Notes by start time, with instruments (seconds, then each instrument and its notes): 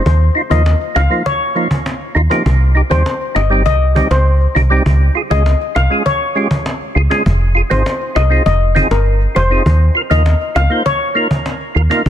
0.06 fm bass D#2, cajon bass
0.21 cajon slap
0.35 tonewheel organ D#4 F4, cajon slap
0.50 fm bass D#2, tonewheel organ F3 A#3 D#4 F4, steel pan D#5, cajon bass
0.66 cajon slap
0.81 cajon slap
0.95 fm bass C#2, tonewheel organ D#4 F4, steel pan F5, cajon slap
1.10 tonewheel organ F3 A#3 D#4 F4, cajon slap
1.26 steel pan C#5, cajon bass
1.41 cajon slap
1.55 tonewheel organ F3 A#3 D#4 F4, cajon slap
1.71 cajon bass
1.86 cajon slap
2.01 cajon slap
2.15 fm bass D#2, tonewheel organ D#4 F4, cajon slap
2.30 tonewheel organ F3 A#3 D#4 G4, cajon slap
2.46 fm bass C2, cajon bass
2.61 cajon slap
2.75 tonewheel organ D#4 G4, cajon slap
2.90 fm bass D#2, tonewheel organ G3 C4 D#4 G4, steel pan C5, cajon bass
3.06 cajon slap
3.21 cajon slap
3.35 fm bass G1, tonewheel organ D#4 G4, steel pan D#5, cajon slap
3.50 tonewheel organ G3 C4 D#4 G4, cajon slap
3.66 fm bass C2, steel pan D#5, cajon bass
3.81 cajon slap
3.95 tonewheel organ G3 C4 D#4 G4, cajon bass
4.11 fm bass C#2, steel pan C5, cajon slap
4.26 cajon slap
4.41 cajon slap
4.55 fm bass C2, tonewheel organ D#4 G4, cajon bass
4.70 tonewheel organ G3 C4 D#4 G4, cajon slap
4.86 fm bass C#2, cajon bass
5.01 cajon slap
5.15 tonewheel organ F4 G#4, cajon slap
5.30 fm bass C#2, tonewheel organ G#3 C#4 F4 G#4, steel pan D#5, cajon bass
5.46 cajon slap
5.61 cajon slap
5.75 fm bass C2, tonewheel organ F4 A#4, steel pan F5, cajon slap
5.90 tonewheel organ G#3 C#4 F4 G#4, cajon slap
6.06 steel pan C#5, cajon bass
6.21 cajon slap
6.35 tonewheel organ G#3 C#4 F4 G4, cajon slap
6.51 cajon bass
6.66 cajon slap
6.81 cajon slap
6.95 fm bass C#2, tonewheel organ F4 G#4, cajon slap
7.10 tonewheel organ G#3 C#4 F4 G#4, cajon slap
7.26 fm bass F1, cajon bass
7.41 cajon slap
7.55 tonewheel organ F4 G#4, cajon slap
7.70 fm bass G#1, tonewheel organ C4 D#4 F4 G#4, steel pan C5, cajon bass
7.86 cajon slap
8.01 cajon slap
8.15 fm bass C2, tonewheel organ F4 G#4, steel pan D#5, cajon slap
8.30 tonewheel organ C4 D#4 F4 G#4, cajon slap
8.46 fm bass F1, steel pan D#5, cajon bass
8.61 cajon slap
8.75 tonewheel organ C4 D#4 F4 G#4, cajon bass
8.91 fm bass G1, steel pan A#4, cajon slap
9.06 cajon slap
9.21 cajon slap
9.35 fm bass F1, tonewheel organ F4 G#4, steel pan C5, cajon bass
9.50 tonewheel organ C4 D#4 F4 G#4, cajon slap
9.66 fm bass D#2, cajon bass
9.81 cajon slap
9.95 tonewheel organ F4 A#4, cajon slap
10.10 fm bass D#2, tonewheel organ A#3 D#4 F4 A#4, steel pan D#5, cajon bass
10.26 cajon slap
10.41 cajon slap
10.55 fm bass C#2, tonewheel organ F4 A#4, steel pan F5, cajon slap
10.70 tonewheel organ A#3 D#4 F4 C5, cajon slap
10.86 steel pan C#5, cajon bass
11.01 cajon slap
11.15 tonewheel organ A#3 D#4 F4 A#4, cajon slap
11.31 cajon bass
11.46 cajon slap
11.61 cajon slap
11.75 fm bass D#2, tonewheel organ F4 A#4, cajon slap
11.90 tonewheel organ A#3 D#4 F4 A#4, cajon slap
12.06 fm bass C2, cajon bass